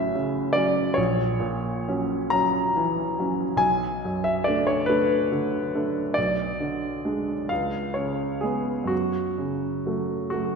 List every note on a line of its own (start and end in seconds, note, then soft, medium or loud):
0.00 0.93 A1 medium
0.00 1.00 A2 soft
0.00 0.55 F#3 soft
0.00 0.56 C#4 soft
0.00 0.15 E5 medium
0.00 1.00 F#5 medium
0.15 0.81 C#3 soft
0.53 0.93 F#3 soft
0.53 0.93 C#4 soft
0.53 0.96 D5 medium
0.94 3.57 A#1 soft
0.94 2.33 C#5 medium
1.40 2.16 A#2 soft
1.88 2.30 F#3 soft
1.88 2.31 C#4 soft
2.30 2.72 F#3 soft
2.30 2.73 C#4 soft
2.30 3.59 A#5 medium
2.77 3.44 E3 soft
3.19 3.57 F#3 soft
3.19 3.57 C#4 soft
3.56 6.11 B1 soft
3.56 4.23 G#5 medium
4.05 4.72 F#2 soft
4.24 4.46 E5 medium
4.44 4.85 A3 soft
4.44 4.85 D4 soft
4.44 4.67 D5 medium
4.67 4.88 C#5 medium
4.86 5.28 A3 soft
4.86 5.27 D4 soft
4.86 6.16 B4 medium
5.32 6.00 D3 soft
5.75 6.14 A3 soft
5.75 6.14 D4 soft
6.14 7.47 B1 soft
6.14 7.49 D5 medium
6.60 7.32 D3 soft
7.05 7.46 G#3 soft
7.05 7.46 D4 soft
7.49 8.88 C#2 soft
7.49 7.96 F5 medium
7.94 8.72 C#3 soft
7.94 8.42 C#5 medium
8.41 8.87 G#3 soft
8.41 8.87 B3 soft
8.41 8.90 G#4 medium
8.84 10.55 F#2 soft
8.84 10.29 F#4 medium
9.38 10.13 C#3 soft
9.86 10.28 F#3 soft
9.86 10.29 A3 soft
10.30 10.55 F#3 soft
10.30 10.55 A3 soft
10.30 10.55 F#4 medium